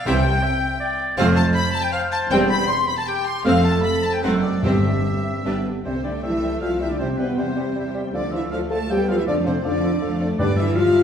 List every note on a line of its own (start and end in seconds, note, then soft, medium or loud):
0.05 0.37 C2 medium
0.05 0.58 C3 loud
0.05 0.37 C3 medium
0.05 0.19 E3 medium
0.05 0.23 G3 medium
0.05 0.19 C4 medium
0.05 0.23 C4 medium
0.05 0.23 E4 medium
0.05 0.45 C5 medium
0.05 0.23 E5 medium
0.05 0.97 G5 medium
0.05 0.97 G5 loud
0.05 0.99 G5 loud
0.43 0.80 E5 medium
0.80 1.17 D5 medium
1.17 1.49 F1 medium
1.17 1.49 F2 medium
1.17 1.35 A3 medium
1.17 1.31 A3 medium
1.17 1.31 C4 medium
1.17 1.35 C4 medium
1.17 1.36 F4 medium
1.17 1.92 C5 medium
1.17 1.36 C5 medium
1.17 1.37 F5 loud
1.17 1.25 F5 loud
1.17 1.23 F5 loud
1.36 1.54 A5 medium
1.36 1.44 A5 loud
1.36 1.42 A5 medium
1.55 1.63 B5 loud
1.55 1.74 B5 loud
1.73 1.83 A5 loud
1.73 1.84 A5 loud
1.84 1.88 G5 medium
1.84 1.93 G5 medium
1.84 1.93 G5 loud
1.92 2.78 C5 loud
1.92 2.00 F5 loud
1.92 2.13 F5 loud
1.92 1.99 F5 loud
2.12 2.19 A5 loud
2.12 2.32 A5 medium
2.12 2.19 A5 medium
2.30 2.63 E1 medium
2.30 2.63 E2 medium
2.30 2.44 G3 medium
2.30 2.49 G3 medium
2.30 2.44 C4 medium
2.30 2.49 C4 medium
2.30 2.49 C5 medium
2.30 2.38 G5 loud
2.30 2.49 G5 loud
2.30 2.38 G5 medium
2.50 2.59 B5 medium
2.50 2.69 B5 loud
2.68 2.77 C6 medium
2.68 2.88 C6 medium
2.68 2.89 C6 loud
2.87 2.92 B5 medium
2.87 2.98 B5 loud
2.97 3.02 A5 medium
2.97 3.08 A5 loud
3.07 3.47 G4 medium
3.07 3.26 G5 medium
3.07 3.27 G5 loud
3.07 3.16 G5 medium
3.26 3.45 C6 loud
3.26 3.35 C6 medium
3.26 3.32 C6 medium
3.45 3.78 F1 medium
3.45 3.78 F2 medium
3.45 3.63 A3 medium
3.45 4.19 A3 medium
3.45 3.63 C4 medium
3.45 3.64 C4 medium
3.45 4.19 C4 medium
3.45 4.22 A4 medium
3.45 3.63 C5 medium
3.45 3.54 F5 medium
3.45 3.51 F5 medium
3.45 3.65 F5 loud
3.65 3.84 A5 medium
3.65 3.83 A5 medium
3.65 3.84 A5 loud
3.83 4.04 B5 medium
3.83 4.03 B5 medium
3.83 4.03 B5 loud
4.03 4.15 A5 medium
4.03 4.13 A5 medium
4.13 4.23 G5 medium
4.13 4.24 G5 medium
4.23 4.56 F#1 medium
4.23 4.56 F#2 medium
4.23 4.62 A3 medium
4.23 4.42 A3 medium
4.23 4.62 C4 medium
4.23 4.42 C4 medium
4.23 4.42 D#4 medium
4.23 4.62 A4 medium
4.23 4.41 C5 medium
4.23 4.42 F#5 medium
4.23 4.31 F#5 medium
4.23 4.43 F#5 medium
4.42 4.62 D5 medium
4.42 4.48 D5 medium
4.42 4.63 D5 medium
4.62 4.97 G1 medium
4.62 5.20 G2 medium
4.62 4.97 G2 medium
4.62 5.43 G3 medium
4.62 4.82 G3 medium
4.62 5.43 C4 medium
4.62 4.82 C4 medium
4.62 4.82 G4 medium
4.62 5.63 G4 medium
4.62 4.82 C5 medium
4.62 5.65 E5 medium
4.62 5.63 E5 medium
5.44 5.78 G1 medium
5.44 5.79 G2 medium
5.44 5.63 G3 medium
5.44 5.54 G3 medium
5.44 5.65 B3 medium
5.44 5.64 D4 medium
5.44 5.64 G4 medium
5.44 5.64 B4 medium
5.84 6.19 C2 soft
5.84 6.03 C3 medium
5.84 5.94 G3 soft
5.84 6.96 A3 medium
5.84 5.94 C4 medium
5.84 6.03 C5 soft
5.84 5.94 C5 soft
5.84 5.91 E5 soft
5.84 6.03 E5 soft
6.04 6.12 D3 soft
6.04 6.13 G3 soft
6.04 6.12 D4 soft
6.04 6.13 C5 soft
6.04 6.22 D5 soft
6.04 6.23 D5 soft
6.04 6.11 E5 soft
6.04 6.23 G5 soft
6.23 6.57 C2 soft
6.23 6.61 E3 soft
6.23 6.32 G3 soft
6.23 6.61 E4 medium
6.23 6.32 C5 soft
6.23 6.60 E5 medium
6.23 6.29 E5 soft
6.23 6.61 E5 medium
6.23 6.43 E5 soft
6.42 6.51 G3 soft
6.42 6.52 C5 soft
6.42 6.49 E5 soft
6.42 6.62 G5 soft
6.61 6.95 C2 soft
6.61 6.80 F3 medium
6.61 6.70 G3 soft
6.61 6.80 F4 medium
6.61 6.70 C5 soft
6.61 6.68 E5 soft
6.61 6.80 E5 soft
6.61 6.70 F5 medium
6.61 6.81 F5 medium
6.80 6.90 E3 medium
6.80 6.89 G3 soft
6.80 6.90 E4 medium
6.80 6.89 C5 soft
6.80 6.91 E5 soft
6.80 6.87 E5 soft
6.80 6.91 E5 medium
6.80 7.00 G5 soft
6.89 6.99 D3 soft
6.89 7.00 D4 soft
6.89 6.98 D5 soft
6.89 7.00 D5 soft
6.99 7.33 E2 soft
6.99 7.18 C3 medium
6.99 7.08 G3 soft
6.99 8.14 G3 soft
6.99 7.19 C4 medium
6.99 7.19 C5 medium
6.99 7.07 C5 soft
6.99 7.08 C5 soft
6.99 7.05 E5 soft
6.99 7.18 E5 soft
7.17 7.37 B2 soft
7.17 7.27 G3 soft
7.17 7.38 B3 medium
7.17 7.36 B4 soft
7.17 7.37 B4 soft
7.17 7.28 C5 soft
7.17 7.24 E5 soft
7.17 7.38 G5 soft
7.36 7.71 E2 medium
7.36 7.95 C3 soft
7.36 7.46 G3 soft
7.36 7.95 C4 medium
7.36 7.93 C5 soft
7.36 7.94 C5 soft
7.36 7.47 C5 soft
7.36 7.44 E5 soft
7.36 7.57 E5 soft
7.56 7.65 G3 soft
7.56 7.66 C5 soft
7.56 7.63 E5 soft
7.56 7.77 G5 soft
7.76 8.10 E2 soft
7.76 7.84 G3 soft
7.76 7.84 C5 soft
7.76 7.82 E5 soft
7.76 7.94 E5 soft
7.95 8.03 G3 soft
7.95 8.04 C5 soft
7.95 8.01 E5 soft
7.95 8.14 G5 soft
8.13 8.47 D2 medium
8.13 8.32 D3 medium
8.13 8.52 F3 medium
8.13 8.23 F3 soft
8.13 8.22 D4 medium
8.13 8.22 A4 soft
8.13 8.33 D5 medium
8.13 8.20 D5 medium
8.13 8.32 D5 medium
8.13 8.32 D5 soft
8.31 8.52 E3 medium
8.31 8.42 F3 soft
8.31 8.41 E4 medium
8.31 8.42 A4 soft
8.31 8.38 D5 soft
8.31 8.50 E5 medium
8.31 8.41 E5 medium
8.31 8.53 F5 soft
8.51 8.85 D2 medium
8.51 8.61 F3 soft
8.51 8.60 F3 medium
8.51 8.89 A3 soft
8.51 8.61 F4 medium
8.51 8.61 A4 soft
8.51 8.71 D5 soft
8.51 8.58 D5 soft
8.51 8.60 F5 medium
8.70 8.80 F3 soft
8.70 8.90 A3 medium
8.70 8.79 A4 medium
8.70 8.80 A4 soft
8.70 8.77 D5 soft
8.70 8.90 F5 soft
8.70 8.89 A5 medium
8.70 8.90 A5 medium
8.89 9.23 D2 medium
8.89 8.99 F3 soft
8.89 9.09 G3 medium
8.89 9.27 B3 medium
8.89 8.98 G4 medium
8.89 8.98 A4 soft
8.89 8.96 D5 soft
8.89 9.08 D5 soft
8.89 9.08 G5 medium
8.89 9.09 G5 medium
9.08 9.12 F3 medium
9.08 9.17 F3 soft
9.08 9.18 F4 medium
9.08 9.18 A4 soft
9.08 9.15 D5 soft
9.08 9.19 F5 medium
9.08 9.26 F5 soft
9.08 9.18 F5 medium
9.18 9.21 E3 medium
9.18 9.24 E4 medium
9.18 9.26 E5 medium
9.18 9.22 E5 medium
9.26 9.60 F2 medium
9.26 9.35 D3 medium
9.26 9.36 F3 medium
9.26 9.64 A3 medium
9.26 9.46 D4 medium
9.26 9.36 A4 medium
9.26 9.35 D5 medium
9.26 9.33 D5 medium
9.26 9.35 D5 medium
9.26 9.45 F5 soft
9.45 9.53 C3 medium
9.45 9.55 F3 soft
9.45 9.64 C4 medium
9.45 9.55 A4 soft
9.45 9.63 C5 medium
9.45 9.53 C5 medium
9.45 9.52 D5 medium
9.45 9.65 D5 medium
9.64 9.97 F2 medium
9.64 10.19 D3 medium
9.64 9.73 F3 medium
9.64 10.01 F3 medium
9.64 10.20 D4 medium
9.64 9.73 A4 soft
9.64 10.19 D5 medium
9.64 9.70 D5 medium
9.64 10.20 D5 medium
9.64 9.83 F5 soft
9.83 9.92 F3 medium
9.83 9.92 A4 medium
9.83 9.89 D5 medium
9.83 10.02 D5 medium
10.01 10.35 F2 medium
10.01 10.10 F3 medium
10.01 10.39 A3 medium
10.01 10.10 A4 medium
10.01 10.07 D5 medium
10.01 10.20 F5 medium
10.20 10.29 F3 medium
10.20 10.29 A4 medium
10.20 10.27 D5 medium
10.20 10.39 D5 medium
10.39 11.03 G2 medium
10.39 10.91 G2 medium
10.39 10.56 D3 medium
10.39 10.52 G3 medium
10.39 11.03 G3 medium
10.39 10.47 D4 medium
10.39 10.52 B4 medium
10.39 10.74 B4 medium
10.39 10.47 D5 medium
10.39 10.56 D5 medium
10.57 10.76 E3 medium
10.57 10.76 E4 medium
10.57 10.65 E5 medium
10.57 10.76 E5 medium
10.75 11.03 F3 medium
10.75 11.03 F4 medium
10.75 10.95 E5 medium
10.75 11.03 F5 medium
10.95 11.03 D5 medium